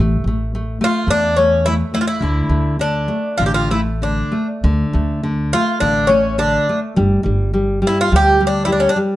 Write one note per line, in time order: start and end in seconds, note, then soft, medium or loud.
0.00 0.15 A1 medium
0.00 0.26 A3 medium
0.24 0.78 A1 medium
0.24 0.53 A3 soft
0.55 0.80 A3 soft
0.81 1.07 A3 medium
0.81 1.10 F4 medium
1.07 1.81 E2 medium
1.07 1.36 A3 soft
1.07 1.36 D4 medium
1.37 1.65 A3 soft
1.37 1.66 C#4 medium
1.66 1.93 A3 soft
1.66 1.73 E4 medium
1.94 2.21 A3 soft
1.94 2.00 E4 medium
2.01 2.07 F4 medium
2.07 2.76 E4 medium
2.21 2.40 D2 medium
2.21 2.78 D3 medium
2.49 3.07 D2 medium
2.49 2.78 A3 soft
2.79 3.08 D3 soft
2.79 3.42 D4 medium
3.08 3.38 A3 soft
3.38 4.21 A1 medium
3.38 3.70 D3 soft
3.38 3.46 F4 medium
3.46 3.54 G4 medium
3.54 3.71 F4 medium
3.71 4.02 A3 soft
3.71 3.80 E4 medium
4.02 4.33 D3 soft
4.02 4.47 D4 medium
4.32 4.62 A3 soft
4.64 4.83 D2 medium
4.64 5.22 D3 medium
4.93 5.52 D2 medium
4.93 5.22 A3 soft
5.23 5.52 D3 soft
5.53 5.82 A3 soft
5.53 5.80 F4 medium
5.80 6.56 A1 medium
5.80 6.10 D3 soft
5.80 6.08 D4 medium
6.07 6.38 A3 soft
6.07 6.36 C#4 medium
6.38 6.66 D3 soft
6.38 6.79 D4 medium
6.69 6.96 A3 soft
6.96 7.16 G1 medium
6.96 7.22 G3 medium
7.23 7.82 G1 medium
7.23 7.52 G3 soft
7.53 7.81 G3 soft
7.82 8.10 G3 soft
7.87 8.00 E4 medium
8.01 8.13 F4 medium
8.12 8.85 D2 medium
8.12 8.39 G3 medium
8.16 8.43 G4 loud
8.40 8.66 G3 medium
8.47 8.64 D4 medium
8.65 8.95 G3 medium
8.65 8.72 E4 medium
8.72 8.80 D4 medium
8.80 8.88 C#4 medium
8.89 8.97 D4 medium
8.96 9.16 G3 soft